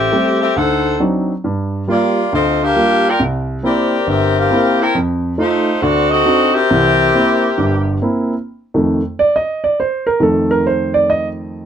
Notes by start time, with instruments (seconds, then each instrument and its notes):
Already playing: saxophone section C4 G4 A4 E5
0.12 grand piano G3 A3 C4
0.41 saxophone section C4 G4 A4 E5
0.56 grand piano D2, saxophone section D#4 A4 C5 F#5
1.00 grand piano F#3 C4 D4 D#4
1.44 grand piano G2
1.88 grand piano G3 A#3 F4, saxophone section A#3 F4 G4 D5
2.33 grand piano D2, saxophone section C4 F4 A4 D#5
2.63 saxophone section D4 G4 A#4 F5
2.76 grand piano G3 A#3 F4
3.08 saxophone section F4 A#4 D5 G5
3.20 grand piano C2
3.63 grand piano A#3 C4 E4, saxophone section C4 G4 A#4 D5
4.07 grand piano G1, saxophone section C4 G4 A#4 E5
4.37 saxophone section C4 G4 A#4 F5
4.50 grand piano A#3 C4 E4
4.81 saxophone section E4 A#4 C5 G5
4.95 grand piano F2
5.38 grand piano A3 D#4 F4, saxophone section A3 D#4 F4 C5
5.82 grand piano D2, saxophone section C4 F#4 A4 D5
6.09 saxophone section C4 F#4 A4 D#5
6.26 grand piano C4 D4 D#4 F#4
6.53 saxophone section C4 G4 A#4 E5
6.70 grand piano C2 E3
7.15 grand piano A#3 C4 E4
7.58 grand piano G1 G2
8.02 grand piano A#3 C4 E4
8.74 grand piano F2 D#3 A3
9.19 grand piano D5
9.36 grand piano D#5
9.64 grand piano D5
9.80 grand piano C5
10.07 grand piano A#4
10.20 grand piano F2 D#3 A3 A4
10.51 grand piano A#4
10.67 grand piano C5
10.94 grand piano D5
11.10 grand piano D#5